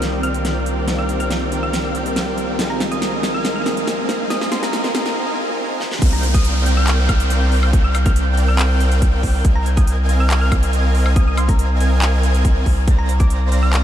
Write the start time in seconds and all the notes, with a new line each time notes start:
Already playing: C2 D#3 G3 A#3 C4 D4 D#4 F4 A#4 D5 F5 G5, riser
0.02 snare, closed hi-hat
0.23 F6, closed hi-hat
0.34 closed hi-hat
0.45 snare, closed hi-hat
0.66 closed hi-hat
0.86 G3 C4 D4 D#4 F4 A#4 D5 F5 G5, snare, closed hi-hat
0.90 C5
0.99 F6
1.09 closed hi-hat
1.20 F6, closed hi-hat
1.30 snare, closed hi-hat
1.50 G3 C4 D4 D#4 F4 A#4 D5 F5 G5, closed hi-hat
1.63 F6
1.73 snare, closed hi-hat
1.95 closed hi-hat
2.04 G3 D4 D#4 F4 A#4, closed hi-hat
2.16 snare, closed hi-hat
2.38 closed hi-hat
2.57 C2 F3 G#3 C4 D#4 F4 A#4 D#5 F5 G#5, snare, closed hi-hat
2.70 A#5
2.80 snare, closed hi-hat
2.92 D#6, closed hi-hat
3.02 snare, closed hi-hat
3.21 G#3 C4 D#4 F4 A#4 D#5 F5 G#5, snare, closed hi-hat
3.25 A#4
3.35 F6
3.45 snare, closed hi-hat
3.56 F6
3.66 snare, closed hi-hat
3.77 closed hi-hat
3.87 snare, closed hi-hat
4.09 snare, closed hi-hat
4.28 G#3 C4 D#4 F4 A#4 C5 D#5 F5 G#5 D#6, snare, closed hi-hat
4.41 D#6, snare
4.52 C6, snare, closed hi-hat
4.63 A#5, snare, closed hi-hat
4.73 snare, closed hi-hat
4.84 snare
4.94 G#3 C4 D#4 F4 A#4 D#5 F5 G#5, snare, closed hi-hat
5.06 snare
5.80 snare
5.91 snare
6.02 C2 C4 A#4 D5 F5 G5 G6, kick, closed hi-hat, crash, downlifter
6.13 A#5
6.23 closed hi-hat
6.34 D#6, kick, closed hi-hat
6.45 closed hi-hat
6.66 C4 A#4 D5 F5 G5 G6, closed hi-hat
6.77 F6
6.87 clap, closed hi-hat
7.09 F6, kick, closed hi-hat, high woodblock
7.20 closed hi-hat
7.30 closed hi-hat
7.52 open hi-hat
7.63 high woodblock
7.73 C4 A#4 D5 F5 G5, kick, closed hi-hat
7.84 F6
7.95 closed hi-hat, high woodblock
8.06 F6, kick, closed hi-hat
8.16 closed hi-hat
8.37 C4 A#4 D5 F5 G5 G6, closed hi-hat
8.48 F6
8.59 clap, closed hi-hat
8.80 closed hi-hat
8.92 closed hi-hat
9.02 kick, closed hi-hat
9.23 kick, open hi-hat
9.45 C2 C4 A#4 D#5 F5 G#5 G#6, kick, closed hi-hat
9.56 A#5
9.66 closed hi-hat
9.77 D#6, kick, closed hi-hat
9.87 closed hi-hat
10.09 C4 A#4 D#5 F5 G#5 G#6, closed hi-hat
10.20 F6
10.30 clap, closed hi-hat
10.41 F6
10.52 kick, closed hi-hat, high woodblock
10.63 closed hi-hat
10.73 closed hi-hat
10.95 open hi-hat
11.06 high woodblock
11.16 C4 A#4 D#5 F5 G#5 D#6 G#6, kick, closed hi-hat
11.28 D#6
11.37 C6, closed hi-hat, high woodblock
11.49 A#5, kick, closed hi-hat
11.59 closed hi-hat
11.80 C4 A#4 D#5 F5 G#5 G#6, closed hi-hat
12.02 clap, closed hi-hat
12.23 closed hi-hat
12.34 closed hi-hat
12.45 kick, closed hi-hat
12.66 C2, kick, open hi-hat
12.87 C4 C5 D5 F5 A#5 A#6, kick, closed hi-hat
12.99 A#5
13.09 closed hi-hat
13.20 D6, kick, closed hi-hat
13.30 closed hi-hat
13.52 C4 C5 D5 F5 A#5 A#6, closed hi-hat
13.63 F6
13.73 clap, closed hi-hat